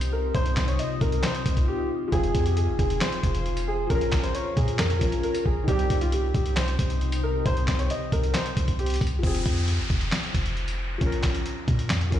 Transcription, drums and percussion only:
0.01 closed hi-hat
0.35 kick, closed hi-hat
0.46 closed hi-hat
0.56 kick, snare, clap, closed hi-hat
0.68 closed hi-hat
0.79 closed hi-hat
1.01 kick, closed hi-hat
1.12 closed hi-hat
1.23 snare, clap, closed hi-hat
1.35 closed hi-hat
1.46 kick, closed hi-hat
1.57 kick, closed hi-hat
2.12 kick, closed hi-hat
2.24 closed hi-hat
2.35 kick, closed hi-hat
2.46 closed hi-hat
2.57 closed hi-hat
2.79 kick, closed hi-hat
2.90 closed hi-hat
3.01 snare, clap, closed hi-hat
3.12 closed hi-hat
3.23 kick, closed hi-hat
3.35 closed hi-hat
3.46 closed hi-hat
3.57 closed hi-hat
3.90 kick, closed hi-hat
4.01 closed hi-hat
4.12 kick, snare, clap, closed hi-hat
4.24 closed hi-hat
4.35 closed hi-hat
4.57 kick, closed hi-hat
4.68 closed hi-hat
4.79 snare, clap, closed hi-hat
4.90 closed hi-hat
5.01 kick, closed hi-hat
5.12 closed hi-hat
5.23 closed hi-hat
5.35 closed hi-hat
5.46 kick
5.68 kick, closed hi-hat
5.79 closed hi-hat
5.90 kick, closed hi-hat
6.01 closed hi-hat
6.12 closed hi-hat
6.35 kick, closed hi-hat
6.46 closed hi-hat
6.56 snare, clap, closed hi-hat
6.68 closed hi-hat
6.79 kick, closed hi-hat
6.90 closed hi-hat
7.01 closed hi-hat
7.12 closed hi-hat
7.46 kick, closed hi-hat
7.57 closed hi-hat
7.68 kick, snare, clap, closed hi-hat
7.79 closed hi-hat
7.90 closed hi-hat
8.12 kick, closed hi-hat
8.23 closed hi-hat
8.34 snare, clap, closed hi-hat
8.46 closed hi-hat
8.57 kick, closed hi-hat
8.68 kick, closed hi-hat
8.79 closed hi-hat
8.86 closed hi-hat
8.90 closed hi-hat
8.94 closed hi-hat
8.96 closed hi-hat
9.01 kick, closed hi-hat
9.07 closed hi-hat
9.23 kick, closed hi-hat
9.35 closed hi-hat
9.46 kick, closed hi-hat
9.57 closed hi-hat
9.68 closed hi-hat
9.90 kick, closed hi-hat
10.01 closed hi-hat
10.12 snare, clap, closed hi-hat
10.23 closed hi-hat
10.35 kick, closed hi-hat
10.46 closed hi-hat
10.57 closed hi-hat
10.68 closed hi-hat
11.01 kick, closed hi-hat
11.12 closed hi-hat
11.23 kick, snare, clap, closed hi-hat
11.35 closed hi-hat
11.46 closed hi-hat
11.68 kick, closed hi-hat
11.79 closed hi-hat
11.90 snare, clap, closed hi-hat
12.01 closed hi-hat
12.12 kick, closed hi-hat

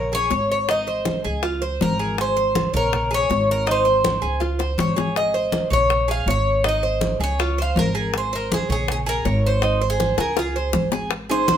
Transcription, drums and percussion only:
0.12 high bongo, high conga
0.31 high bongo, low bongo, high conga
0.69 high bongo, high conga
0.87 high bongo, high conga
1.05 high bongo, high conga
1.24 high bongo, high conga
1.43 high bongo, high conga
1.62 high bongo, high conga
1.81 high bongo, low bongo, high conga
2.18 high bongo, high conga
2.37 high bongo, high conga
2.55 high bongo, high conga
2.74 high bongo, high conga, low conga
2.93 high bongo, high conga, low conga
3.12 high bongo, high conga
3.30 high bongo, low bongo, high conga
3.67 high bongo, high conga
3.86 high bongo, high conga
4.04 high bongo, high conga
4.23 high bongo, high conga
4.41 high bongo, high conga
4.60 high bongo, high conga
4.78 low bongo, high conga
4.96 low bongo, high conga
5.16 high bongo, high conga
5.34 high bongo, high conga
5.52 high bongo, high conga
5.71 high bongo, high conga, low conga
5.90 high bongo, high conga
6.08 high bongo, high conga
6.27 high bongo, low bongo, high conga
6.64 high bongo, high conga
6.82 high bongo, high conga
7.01 high bongo, high conga
7.20 high bongo, high conga
7.39 high bongo, high conga
7.58 high bongo, high conga
7.76 high bongo, low bongo, high conga
8.14 high bongo, high conga
8.33 high bongo, high conga
8.52 high bongo, high conga
8.70 high bongo, high conga, low conga
8.88 high bongo, high conga, low conga
9.07 high bongo, high conga
9.25 high bongo, low bongo, high conga
9.62 high bongo, high conga
9.81 high bongo, high conga
10.00 high bongo, high conga
10.18 high bongo, high conga
10.37 high bongo, high conga
10.56 high conga
10.73 low bongo, high conga
10.92 low bongo
11.11 high bongo, high conga
11.30 high bongo, high conga
11.48 high bongo, high conga

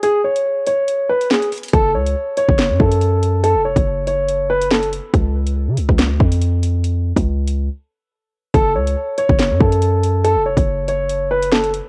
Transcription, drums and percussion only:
0.03 closed hi-hat
0.36 closed hi-hat
0.67 closed hi-hat
0.88 closed hi-hat
1.21 closed hi-hat
1.31 snare
1.42 closed hi-hat
1.52 closed hi-hat, open hi-hat
1.58 closed hi-hat
1.63 closed hi-hat
1.68 closed hi-hat
1.73 kick, closed hi-hat
2.06 closed hi-hat
2.37 closed hi-hat
2.48 kick
2.58 snare, closed hi-hat
2.80 kick
2.91 closed hi-hat
3.01 closed hi-hat
3.23 closed hi-hat
3.44 closed hi-hat
3.76 kick, closed hi-hat
4.07 closed hi-hat
4.28 closed hi-hat
4.62 closed hi-hat
4.71 snare
4.83 closed hi-hat
4.93 closed hi-hat
5.14 kick, closed hi-hat
5.47 closed hi-hat
5.77 closed hi-hat
5.89 kick
5.99 snare, closed hi-hat
6.20 kick
6.32 closed hi-hat
6.41 closed hi-hat
6.63 closed hi-hat
6.84 closed hi-hat
7.16 kick, closed hi-hat
7.47 closed hi-hat
8.54 kick, closed hi-hat
8.87 closed hi-hat
9.18 closed hi-hat
9.29 kick
9.39 snare, closed hi-hat
9.61 kick
9.72 closed hi-hat
9.82 closed hi-hat
10.03 closed hi-hat
10.25 closed hi-hat
10.57 kick, closed hi-hat
10.88 closed hi-hat
11.09 closed hi-hat
11.42 closed hi-hat
11.52 snare
11.64 closed hi-hat
11.74 closed hi-hat

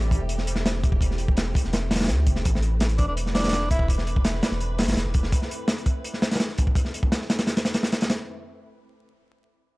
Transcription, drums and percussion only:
0.02 closed hi-hat
0.11 kick, closed hi-hat
0.29 closed hi-hat
0.38 snare
0.47 closed hi-hat
0.56 snare
0.66 snare, closed hi-hat
0.74 snare
0.84 kick, closed hi-hat
0.92 kick
1.01 kick, closed hi-hat
1.11 snare
1.18 closed hi-hat
1.28 kick
1.37 snare, closed hi-hat
1.47 snare
1.55 kick, closed hi-hat
1.64 snare
1.73 snare, closed hi-hat
1.91 snare, closed hi-hat
1.95 snare, closed hi-hat
2.00 snare, closed hi-hat
2.04 snare, closed hi-hat
2.08 snare, closed hi-hat
2.27 kick, closed hi-hat
2.36 snare
2.45 kick, closed hi-hat
2.55 snare
2.63 closed hi-hat
2.80 snare, closed hi-hat
2.89 closed hi-hat
2.98 kick, closed hi-hat
3.17 closed hi-hat
3.26 snare
3.35 snare, closed hi-hat
3.39 snare, closed hi-hat
3.44 snare, closed hi-hat
3.48 snare, closed hi-hat
3.53 snare, closed hi-hat
3.61 snare
3.71 kick, closed hi-hat
3.79 kick
3.88 kick, closed hi-hat
3.98 snare
4.07 closed hi-hat
4.16 kick
4.25 snare, closed hi-hat
4.34 snare
4.43 snare, closed hi-hat
4.51 snare
4.61 closed hi-hat
4.79 snare, closed hi-hat
4.82 snare, closed hi-hat
4.88 snare, closed hi-hat
4.92 snare, closed hi-hat
4.97 snare, closed hi-hat
5.14 kick, closed hi-hat
5.23 snare
5.32 kick, closed hi-hat
5.42 snare
5.51 closed hi-hat
5.68 snare, closed hi-hat
5.78 closed hi-hat
5.86 kick, closed hi-hat
6.05 closed hi-hat
6.14 snare
6.22 snare, closed hi-hat
6.32 snare, closed hi-hat
6.35 snare, closed hi-hat
6.40 snare, closed hi-hat
6.48 snare
6.58 kick, closed hi-hat
6.67 kick
6.75 kick, closed hi-hat
6.85 snare
6.94 closed hi-hat
7.03 kick
7.12 snare, closed hi-hat
7.21 snare
7.30 snare, closed hi-hat
7.39 snare, closed hi-hat
7.47 snare, closed hi-hat
7.57 snare, closed hi-hat
7.65 snare, closed hi-hat
7.74 snare, closed hi-hat
7.83 snare, closed hi-hat
7.92 snare, closed hi-hat
8.01 snare, closed hi-hat
8.10 snare, closed hi-hat

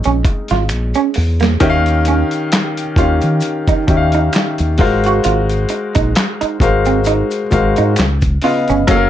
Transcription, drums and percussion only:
0.04 closed hi-hat, maracas
0.25 kick, closed hi-hat
0.48 snare, closed hi-hat, maracas
0.69 finger snap, closed hi-hat, maracas
0.94 closed hi-hat, maracas
1.14 open hi-hat, maracas
1.40 snare, closed hi-hat, maracas
1.60 kick, closed hi-hat, maracas
1.86 closed hi-hat, maracas
2.05 closed hi-hat, maracas
2.31 closed hi-hat, maracas
2.52 finger snap, snare, clap, closed hi-hat, maracas
2.77 closed hi-hat, maracas
2.96 kick, closed hi-hat, maracas
3.21 closed hi-hat, maracas
3.41 closed hi-hat, maracas
3.68 kick, closed hi-hat, maracas
3.88 kick, closed hi-hat, maracas
4.12 closed hi-hat, maracas
4.33 finger snap, snare, clap, closed hi-hat, maracas
4.58 closed hi-hat, maracas
4.78 kick, open hi-hat
5.04 closed hi-hat, maracas
5.24 closed hi-hat, maracas
5.50 closed hi-hat, maracas
5.69 closed hi-hat, maracas
5.95 kick, closed hi-hat, maracas
6.15 finger snap, snare, clap, closed hi-hat, maracas
6.41 closed hi-hat, maracas
6.60 kick, closed hi-hat, maracas
6.85 closed hi-hat, maracas
7.04 closed hi-hat, maracas
7.31 closed hi-hat, maracas
7.51 kick, closed hi-hat, maracas
7.76 closed hi-hat, maracas
7.96 finger snap, snare, clap, closed hi-hat, maracas
8.21 kick, closed hi-hat, maracas
8.42 open hi-hat
8.68 closed hi-hat, maracas
8.87 kick, closed hi-hat, maracas

